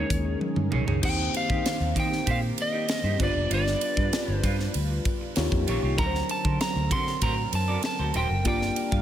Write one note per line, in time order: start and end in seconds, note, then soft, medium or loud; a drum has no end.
0.00 1.02 D#3 medium
0.00 1.00 G#3 medium
0.00 1.01 C#4 medium
0.00 1.02 C#4 medium
0.00 1.01 D#4 medium
0.00 1.02 G#4 medium
0.00 0.99 A#4 medium
0.00 1.01 A#4 medium
0.00 0.38 C#5 medium
0.09 0.34 D#2 medium
0.09 muted clean electric guitar stroke soft
0.09 kick loud
0.09 closed hi-hat medium
0.25 muted clean electric guitar stroke soft
0.40 muted clean electric guitar stroke soft
0.40 high tom medium
0.56 0.68 G2 medium
0.56 muted clean electric guitar stroke medium
0.56 mid tom medium
0.71 0.84 C2 medium
0.71 0.87 D#4 medium
0.71 0.86 G#4 medium
0.71 0.85 C#5 medium
0.71 mid tom medium
0.86 0.99 C#2 medium
0.86 1.01 D#4 medium
0.86 1.02 G#4 medium
0.86 1.03 C#5 medium
0.86 floor tom medium
1.02 1.27 D#2 medium
1.02 3.18 D#3 medium
1.02 3.15 A#3 medium
1.02 3.18 A#3 medium
1.02 3.15 C4 medium
1.02 3.18 C4 medium
1.02 1.22 D#4 medium
1.02 3.16 D#4 medium
1.02 3.17 G4 medium
1.02 1.18 G4 medium
1.02 3.16 G4 medium
1.02 1.17 C5 medium
1.02 3.16 C5 medium
1.02 1.36 G5 loud
1.02 kick loud
1.02 crash loud
1.18 muted clean electric guitar stroke soft
1.33 1.99 F5 medium
1.33 muted clean electric guitar stroke soft
1.33 ride medium
1.48 1.62 D#3 medium
1.48 1.66 D#4 medium
1.48 1.65 G4 medium
1.48 1.65 C5 medium
1.48 kick loud
1.66 snare loud
1.66 ride medium
1.80 1.92 D#2 medium
1.80 muted clean electric guitar stroke medium
1.95 2.19 D#3 loud
1.95 2.15 D#4 medium
1.95 2.11 G4 medium
1.95 2.10 C5 medium
1.95 kick medium
1.95 ride medium
2.00 2.30 G5 loud
2.11 muted clean electric guitar stroke soft
2.11 snare soft
2.26 2.51 A#2 medium
2.26 2.46 D#4 medium
2.26 2.41 G4 medium
2.26 2.40 C5 medium
2.26 kick medium
2.26 ride medium
2.31 2.39 F5 loud
2.41 muted clean electric guitar stroke soft
2.57 muted clean electric guitar stroke soft
2.57 ride medium
2.62 3.23 D#5 loud
2.72 2.87 D#4 medium
2.72 2.88 G4 medium
2.72 2.88 D5 medium
2.88 muted clean electric guitar stroke soft
2.88 snare loud
2.88 ride medium
3.03 3.15 G2 medium
3.03 3.19 D#4 medium
3.03 3.20 G4 medium
3.03 3.20 C5 medium
3.18 3.32 G1 medium
3.18 5.34 G3 medium
3.18 5.32 B3 medium
3.18 5.32 D4 medium
3.18 5.34 D4 medium
3.18 3.39 D4 medium
3.18 5.95 F4 medium
3.18 5.32 F4 medium
3.18 3.35 F4 medium
3.18 5.33 G4 medium
3.18 5.34 B4 loud
3.18 3.34 B4 medium
3.18 3.27 C5 medium
3.18 kick loud
3.18 crash medium
3.23 3.53 D5 medium
3.27 5.36 D5 medium
3.35 3.47 F1 medium
3.35 muted clean electric guitar stroke medium
3.50 3.74 G1 loud
3.50 3.70 D4 medium
3.50 3.66 F4 medium
3.50 3.65 B4 medium
3.50 4.35 D5 medium
3.50 ride medium
3.66 muted clean electric guitar stroke soft
3.66 snare soft
3.81 muted clean electric guitar stroke soft
3.81 ride medium
3.97 4.09 G2 medium
3.97 4.14 D4 medium
3.97 4.13 F4 medium
3.97 4.13 D5 medium
3.97 kick loud
4.13 snare loud
4.13 ride medium
4.28 4.40 G1 medium
4.28 muted clean electric guitar stroke soft
4.35 4.72 C5 medium
4.43 4.67 G2 loud
4.43 4.63 D4 medium
4.43 4.59 F4 medium
4.43 4.58 B4 medium
4.43 kick loud
4.43 snare soft
4.43 ride medium
4.59 muted clean electric guitar stroke medium
4.59 snare soft
4.74 4.98 D2 loud
4.74 muted clean electric guitar stroke soft
4.74 ride medium
4.90 muted clean electric guitar stroke medium
5.05 kick loud
5.05 ride medium
5.21 muted clean electric guitar stroke medium
5.36 5.48 D#2 loud
5.36 5.98 D#3 medium
5.36 5.98 A#3 medium
5.36 5.97 C#4 medium
5.36 5.98 D#4 medium
5.36 5.98 F4 medium
5.36 5.98 G4 medium
5.36 5.99 G4 medium
5.36 5.99 C#5 medium
5.36 muted clean electric guitar stroke soft
5.36 snare loud
5.36 ride medium
5.52 5.64 F2 loud
5.52 muted clean electric guitar stroke soft
5.52 kick medium
5.67 5.79 A#1 medium
5.67 5.84 F4 medium
5.67 5.83 G4 medium
5.67 5.82 C#5 medium
5.67 ride medium
5.82 5.98 C2 medium
5.82 5.98 F4 medium
5.82 5.99 G4 medium
5.82 5.98 C#5 medium
5.97 6.22 D2 loud
5.97 8.43 D3 medium
5.97 8.43 F#3 medium
5.97 8.42 F#3 medium
5.97 8.43 C4 medium
5.97 8.42 D4 medium
5.97 6.18 F#4 medium
5.97 5.99 A#4 medium
5.97 9.02 A#4 loud
5.97 6.15 A#4 medium
5.97 6.06 A#4 medium
5.97 6.13 C5 medium
5.97 6.28 A#5 loud
5.97 kick loud
5.97 ride medium
6.06 8.46 C5 medium
6.14 muted clean electric guitar stroke soft
6.14 snare soft
6.29 6.59 A5 loud
6.29 muted clean electric guitar stroke medium
6.29 ride medium
6.45 6.56 D3 medium
6.45 6.61 F#4 soft
6.45 6.61 A#4 medium
6.45 6.60 C5 medium
6.45 kick loud
6.61 6.92 A#5 loud
6.61 snare loud
6.61 ride medium
6.75 6.92 D2 medium
6.75 muted clean electric guitar stroke medium
6.91 7.14 D3 loud
6.91 7.11 F#4 medium
6.91 7.07 A#4 medium
6.91 7.05 C5 medium
6.91 7.21 C6 loud
6.91 kick loud
6.91 ride medium
7.07 muted clean electric guitar stroke soft
7.07 snare soft
7.22 7.45 A2 medium
7.22 7.42 F#4 medium
7.22 7.37 A#4 loud
7.22 7.36 C5 loud
7.22 7.51 A#5 loud
7.22 kick medium
7.22 ride medium
7.37 muted clean electric guitar stroke soft
7.52 7.76 F#2 medium
7.52 7.83 A5 loud
7.52 muted clean electric guitar stroke soft
7.52 ride medium
7.68 7.83 F#4 medium
7.68 7.84 A#4 medium
7.68 7.84 D5 medium
7.83 8.14 A5 loud
7.83 snare loud
7.83 ride medium
7.99 8.11 D2 medium
7.99 8.13 F#4 soft
7.99 8.14 A#4 medium
7.99 8.15 C5 medium
8.14 8.26 D#1 loud
8.14 8.35 F#4 medium
8.14 8.30 A#4 medium
8.14 8.29 C5 loud
8.14 8.45 G5 medium
8.14 ride medium
8.30 8.45 F#1 medium
8.30 muted clean electric guitar stroke soft
8.44 8.69 G1 loud
8.44 9.02 G3 medium
8.44 9.02 A#3 medium
8.44 9.02 D4 medium
8.44 8.65 F4 medium
8.44 9.02 F4 medium
8.44 9.02 G4 medium
8.44 8.61 A#4 medium
8.44 9.02 D5 medium
8.44 8.60 D5 medium
8.44 9.02 G5 medium
8.44 kick loud
8.44 ride medium
8.61 muted clean electric guitar stroke medium
8.61 snare soft
8.76 muted clean electric guitar stroke soft
8.76 ride medium
8.91 9.02 G2 loud
8.91 9.02 F4 soft
8.91 9.02 A#4 medium
8.91 9.02 F5 medium
8.91 kick loud